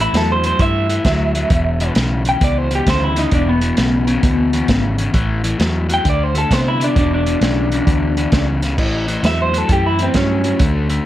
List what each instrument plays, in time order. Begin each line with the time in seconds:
0.00 overdriven electric guitar A2 E3, clean electric guitar E4
0.13 fingered electric bass E2, overdriven electric guitar A2 F#3, clean electric guitar A4, snare, closed hi-hat
0.32 clean electric guitar C5
0.43 overdriven electric guitar A2 F#3, clean electric guitar C5, closed hi-hat
0.59 fingered electric bass G2, overdriven electric guitar A2 E3, clean electric guitar E5, kick, closed hi-hat
0.89 overdriven electric guitar A2 E3, closed hi-hat
1.05 fingered electric bass D2, overdriven electric guitar A2 F#3, kick, snare, closed hi-hat
1.35 overdriven electric guitar A2 F#3, closed hi-hat
1.50 fingered electric bass E1, overdriven electric guitar E2 B2, kick, closed hi-hat
1.80 overdriven electric guitar E2 B2, closed hi-hat
1.95 fingered electric bass B1, overdriven electric guitar E2 C#3, snare, closed hi-hat
2.25 overdriven electric guitar E2 C#3, clean electric guitar G5, closed hi-hat
2.40 fingered electric bass C#2, overdriven electric guitar E2 B2, clean electric guitar D5, kick, closed hi-hat
2.58 clean electric guitar C5
2.71 overdriven electric guitar E2 B2, closed hi-hat
2.75 clean electric guitar G4
2.86 fingered electric bass D2, overdriven electric guitar E2 C#3, clean electric guitar C5, kick, snare, closed hi-hat
3.04 clean electric guitar E4
3.16 overdriven electric guitar E2 C#3, clean electric guitar D#4, snare, closed hi-hat
3.31 fingered electric bass E1, overdriven electric guitar E2 B2, clean electric guitar D4, kick, closed hi-hat
3.49 clean electric guitar B3
3.61 overdriven electric guitar E2 B2, closed hi-hat
3.77 fingered electric bass B1, overdriven electric guitar E2 C#3, snare, closed hi-hat
4.07 overdriven electric guitar E2 C#3, closed hi-hat
4.23 fingered electric bass D2, overdriven electric guitar E2 B2, kick, closed hi-hat
4.53 overdriven electric guitar E2 B2, closed hi-hat
4.68 fingered electric bass G#1, overdriven electric guitar E2 C#3, kick, snare, closed hi-hat
4.98 overdriven electric guitar E2 C#3, closed hi-hat
5.13 fingered electric bass A1, overdriven electric guitar A2 E3, kick, closed hi-hat
5.44 overdriven electric guitar A2 E3, closed hi-hat
5.58 fingered electric bass E2, overdriven electric guitar A2 F#3, snare, closed hi-hat
5.89 overdriven electric guitar A2 F#3, closed hi-hat
5.94 clean electric guitar G5
6.04 fingered electric bass D2, overdriven electric guitar D3 A3, kick, closed hi-hat
6.09 clean electric guitar D5
6.24 clean electric guitar C5
6.35 overdriven electric guitar D3 A3, clean electric guitar A4, closed hi-hat
6.51 fingered electric bass C3, overdriven electric guitar D3 B3, clean electric guitar C5, kick, snare, closed hi-hat
6.68 clean electric guitar E4
6.80 overdriven electric guitar D3 B3, closed hi-hat
6.84 clean electric guitar D4
6.96 fingered electric bass E1, overdriven electric guitar E2 B2, clean electric guitar D4, kick, closed hi-hat
7.14 clean electric guitar D4
7.26 overdriven electric guitar E2 B2, closed hi-hat
7.41 fingered electric bass B1, overdriven electric guitar E2 C#3, snare, closed hi-hat
7.72 overdriven electric guitar E2 C#3, closed hi-hat
7.87 fingered electric bass D2, overdriven electric guitar E2 B2, kick, closed hi-hat
8.17 overdriven electric guitar E2 B2, closed hi-hat
8.32 fingered electric bass C#2, overdriven electric guitar E2 C#3, kick, snare, closed hi-hat
8.62 overdriven electric guitar E2 C#3, snare, closed hi-hat
8.78 fingered electric bass A1, overdriven electric guitar A2 E3, kick, crash
9.07 overdriven electric guitar A2 E3, closed hi-hat
9.23 fingered electric bass E2, overdriven electric guitar A2 F#3, clean electric guitar E5, snare, closed hi-hat
9.42 clean electric guitar C5
9.53 overdriven electric guitar A2 F#3, closed hi-hat
9.58 clean electric guitar A4
9.69 fingered electric bass F#2, overdriven electric guitar A2 E3, clean electric guitar G4, kick, closed hi-hat
9.86 clean electric guitar E4
9.99 overdriven electric guitar A2 E3, clean electric guitar C4, closed hi-hat
10.14 fingered electric bass G2, overdriven electric guitar A2 F#3, clean electric guitar C#4, kick, snare, closed hi-hat
10.44 overdriven electric guitar A2 F#3, closed hi-hat
10.59 fingered electric bass D2, overdriven electric guitar D3 A3, kick, closed hi-hat
10.90 overdriven electric guitar D3 A3, closed hi-hat